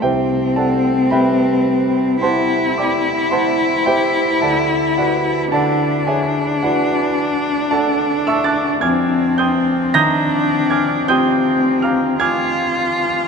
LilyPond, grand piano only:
<<
  \new Staff \with { instrumentName = "Grand piano" } { \time 4/4 \key f \dorian \tempo 4 = 54 <g' c'' e'' g''>8 <a' d'' ges'' a''>8 <ces'' e'' g'' ces'''>4 <c'' ges'' a'' c'''>8 <d'' g'' ces''' d'''>8 <c'' ges'' a'' c'''>8 <g' c'' e'' g''>8 | <a' d'' fis'' a''>8 <fis' ces'' d'' fis''>8 <a' d'' fis'' a''>8 <aes' des'' e'' aes''>8 <fis' ces'' d'' fis''>4 \tuplet 3/2 { <a' d'' fis'' a''>8. <e'' a'' des''' e'''>16 <a'' d''' fis''' a'''>8 } | <aes'' d''' f''' aes'''>8 <g'' c''' ees''' g'''>8 \tuplet 3/2 { <bes'' ees''' g''' bes'''>4 <aes'' d''' f''' aes'''>8 <g'' c''' ees''' g'''>4 <f'' bes'' d''' f'''>8 } <aes'' d''' f''' aes'''>4 | }
  \new Staff \with { instrumentName = "Grand piano" } { \clef bass \time 4/4 \key f \dorian c,4 g4 <e' g'>2 | d,4 d4 e'2 | f,4 ees4 <f' g'>2 | }
>>